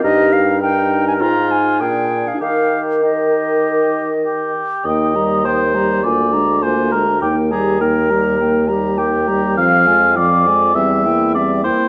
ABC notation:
X:1
M:4/4
L:1/16
Q:1/4=102
K:Eb
V:1 name="Flute"
e2 f2 g3 a b2 a2 g3 f | f3 z e8- e2 z2 | g2 b2 g2 b2 a2 b2 a2 b2 | g2 b2 g2 b2 g2 b2 g2 b2 |
f2 a2 f2 a2 =e2 g2 e2 g2 |]
V:2 name="Oboe"
B4 B4 F4 A4 | G4 G8 G4 | e4 c4 d4 c2 B2 | G2 A2 B6 z2 G4 |
f4 d4 =e4 d2 c2 |]
V:3 name="Clarinet"
E4 E4 E4 D4 | E4 E8- E2 z2 | E2 G2 E2 G2 F2 D2 F2 D2 | E2 G2 E2 G2 E2 G2 E2 G2 |
C2 F2 C2 F2 C2 =E2 C2 E2 |]
V:4 name="French horn"
G4 E4 F2 z2 D4 | B12- B2 z2 | B,2 G,2 B,2 G,2 B,2 A,2 B,2 A,2 | B,2 G,2 B,2 G,2 B,2 G,2 B,2 G,2 |
F,2 A,2 F,2 A,2 G,2 B,2 G,2 B,2 |]
V:5 name="Bassoon" clef=bass
G,,8 A,,4 B,,4 | E,12- E,2 z2 | E,,8 D,,8 | E,,16 |
F,,8 =E,,6 z2 |]